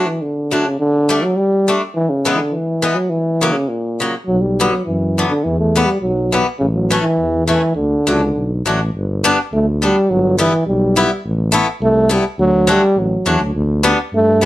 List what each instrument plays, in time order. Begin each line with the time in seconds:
0.06 euphonium E3
0.22 euphonium D3
0.51 steel-string acoustic guitar F#3 A3 D4
0.65 euphonium C#3
0.80 euphonium D3
1.09 steel-string acoustic guitar G3 A3 D4
1.23 euphonium F#3
1.37 euphonium G3
1.68 steel-string acoustic guitar G3 A3 D4
1.95 euphonium E3
2.10 euphonium C#3
2.25 steel-string acoustic guitar E3 G#3 B3
2.35 euphonium D3 E3
2.52 euphonium E3
2.82 steel-string acoustic guitar E3 G#3 B3
2.95 euphonium F#3
3.10 euphonium E3
3.41 steel-string acoustic guitar C#3 F#3 A#3
3.53 euphonium C#3
3.68 euphonium A#2
4.00 steel-string acoustic guitar C#3 F#3 A#3
4.26 tuba B1, euphonium F#3
4.41 euphonium G3
4.60 steel-string acoustic guitar D3 F#3 B3
4.72 euphonium F#3
4.85 tuba F#2, euphonium E3
5.18 steel-string acoustic guitar D3 F#3 B3
5.30 euphonium D3
5.44 tuba E2, euphonium E3
5.59 euphonium A3
5.75 steel-string acoustic guitar E3 G3 B3
5.86 euphonium G3
6.01 tuba B1, euphonium F#3
6.32 steel-string acoustic guitar E3 G3 B3
6.59 tuba A1, euphonium C#3
6.74 euphonium F#3
6.91 steel-string acoustic guitar E3 A3 C#4
7.02 euphonium E3
7.19 tuba E2
7.47 euphonium E3, steel-string acoustic guitar E3 A3 C#4
7.76 tuba D2, euphonium D3
8.07 tuba C#2, steel-string acoustic guitar F#3 A3 D4
8.36 tuba B1
8.66 tuba A1, steel-string acoustic guitar F#3 A3 D4
8.95 tuba G1
9.24 steel-string acoustic guitar G3 B3 D4
9.53 tuba D2, euphonium A3
9.82 steel-string acoustic guitar G3 B3 D4, euphonium G3
10.10 tuba G1, euphonium F#3
10.38 euphonium E3, steel-string acoustic guitar G3 B3 E4
10.67 tuba B1, euphonium G3
10.96 steel-string acoustic guitar G3 B3 E4
11.25 tuba A1
11.52 steel-string acoustic guitar A3 B3 E4
11.82 tuba C2, euphonium A3
12.09 euphonium G3, steel-string acoustic guitar A3 B3 E4
12.38 tuba D2, euphonium F#3
12.67 steel-string acoustic guitar F#3 A3 D4, euphonium G3
12.96 tuba A1, euphonium F#3
13.26 tuba E2, steel-string acoustic guitar F#3 A3 D4
13.40 tuba D2
13.55 tuba D2
13.83 steel-string acoustic guitar G3 B3 D4
14.13 tuba G2, euphonium A3
14.41 steel-string acoustic guitar G3 B3